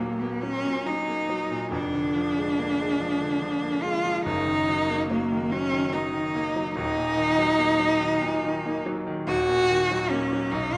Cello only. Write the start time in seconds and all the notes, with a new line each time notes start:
0.00 A#3
0.20 B3
0.42 C#4
0.86 D#4
1.72 D4
3.83 F4
4.26 D#4
5.09 A#3
5.51 C#4
5.93 D#4
6.75 D#4
9.28 F#4
10.10 C#4
10.52 D#4
10.73 F4